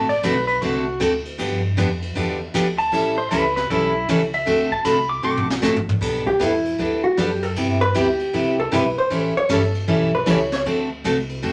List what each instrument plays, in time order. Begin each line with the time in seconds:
Already playing: upright bass A1
0.09 pedal steel guitar D5, ride
0.23 upright bass B1, steel-string acoustic guitar D3 A3 C4 F#4 A4, pedal steel guitar B4, kick, hi-hat pedal, ride
0.47 pedal steel guitar B4, ride
0.62 upright bass C2, steel-string acoustic guitar D3 A3 C4 F#4 A4, pedal steel guitar F#4, kick, ride
1.00 upright bass D2, steel-string acoustic guitar D3 A3 C4 F#4 A4, kick, hi-hat pedal, ride
1.25 ride
1.38 upright bass G2, steel-string acoustic guitar D3 F3 B3 D4 G4, kick, ride
1.77 upright bass F2, steel-string acoustic guitar D3 F3 B3 D4 G4, kick, hi-hat pedal, ride
2.02 ride
2.15 upright bass E2, steel-string acoustic guitar D3 F3 B3 D4 G4, kick, ride
2.54 upright bass D2, steel-string acoustic guitar D3 F3 B3 D4 G4, kick, hi-hat pedal, ride
2.78 pedal steel guitar A5, ride
2.92 upright bass A1, steel-string acoustic guitar E3 G3 C#4 E4 A4, kick, ride
3.18 pedal steel guitar C5
3.31 upright bass C#2, steel-string acoustic guitar E3 G3 C#4 E4 A4, pedal steel guitar B4, kick, hi-hat pedal, ride
3.56 pedal steel guitar B4, snare
3.70 upright bass B1, steel-string acoustic guitar E3 G3 C#4 E4 A4, pedal steel guitar E4, kick, ride
4.08 upright bass C#2, steel-string acoustic guitar E3 G3 C#4 E4 A4, kick, hi-hat pedal, ride
4.33 pedal steel guitar E5, ride
4.46 upright bass D2, steel-string acoustic guitar D3 A3 C4 F#4 A4, kick, ride
4.71 pedal steel guitar A5, kick
4.85 upright bass C2, steel-string acoustic guitar D3 A3 C4 F#4 A4, pedal steel guitar B5, kick, hi-hat pedal, ride
5.09 pedal steel guitar D6
5.23 upright bass B1, steel-string acoustic guitar D3 A3 C4 F#4 A4, pedal steel guitar D6
5.37 floor tom
5.50 snare
5.62 upright bass A1, steel-string acoustic guitar D3 A3 C4 F#4 A4, snare, hi-hat pedal
5.76 floor tom
5.89 floor tom
6.01 upright bass B1, steel-string acoustic guitar G3 B3 D4 A4, kick, crash
6.26 hollow-body jazz guitar G4, kick
6.40 upright bass E2, steel-string acoustic guitar G3 B3 D4 A4, hollow-body jazz guitar E4, hi-hat pedal, ride
6.65 ride
6.79 upright bass D2, steel-string acoustic guitar G3 B3 D4 A4, kick, ride
7.04 hollow-body jazz guitar F#4
7.17 upright bass F#2, steel-string acoustic guitar G3 B3 D4 A4, hollow-body jazz guitar G4, kick, hi-hat pedal, ride
7.42 hollow-body jazz guitar A4, ride
7.56 upright bass G2, steel-string acoustic guitar C3 G3 B3 E4 G4, kick, ride
7.81 hollow-body jazz guitar B4
7.94 upright bass D2, steel-string acoustic guitar C3 G3 B3 E4 G4, hollow-body jazz guitar G4, kick, hi-hat pedal, ride
8.19 ride
8.33 upright bass C2, steel-string acoustic guitar C3 G3 B3 E4 G4, kick, ride
8.60 hollow-body jazz guitar A4
8.71 upright bass B1, steel-string acoustic guitar C3 G3 B3 E4 G4, hollow-body jazz guitar B4, kick, hi-hat pedal, ride
8.97 hollow-body jazz guitar C5, muted upright bass stroke
9.10 upright bass A1, steel-string acoustic guitar E3 G3 C#4 E4 A4, kick, ride
9.36 hollow-body jazz guitar C#5, muted upright bass stroke
9.49 upright bass G1, steel-string acoustic guitar E3 G3 C#4 E4 A4, kick, hi-hat pedal, ride
9.53 hollow-body jazz guitar A4
9.74 ride
9.88 upright bass B1, steel-string acoustic guitar E3 G3 C#4 E4 A4, kick, ride
10.15 hollow-body jazz guitar B4
10.26 upright bass C#2, steel-string acoustic guitar E3 G3 C#4 E4 A4, kick, hi-hat pedal, ride
10.30 hollow-body jazz guitar C#5
10.52 hollow-body jazz guitar C#5, snare, ride
10.66 upright bass D2, steel-string acoustic guitar D3 A3 C4 F#4 A4, kick, ride
11.04 upright bass C2, steel-string acoustic guitar D3 A3 C4 F#4 A4, kick, hi-hat pedal, ride
11.29 ride
11.42 upright bass E2, steel-string acoustic guitar D3 A3 C4 F#4 A4, kick, ride